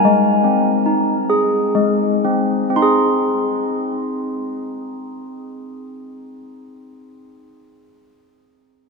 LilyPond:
\new Staff \with { instrumentName = "Handbells" } { \time 3/4 \key aes \major \tempo 4 = 59 << { aes''2~ aes''8 r8 | <c' ees' aes' c'''>2.~ | <c' ees' aes' c'''>2. | } \\ { aes8 c'8 ees'8 aes'8 aes8 c'8 | r2. | r2. | } >> }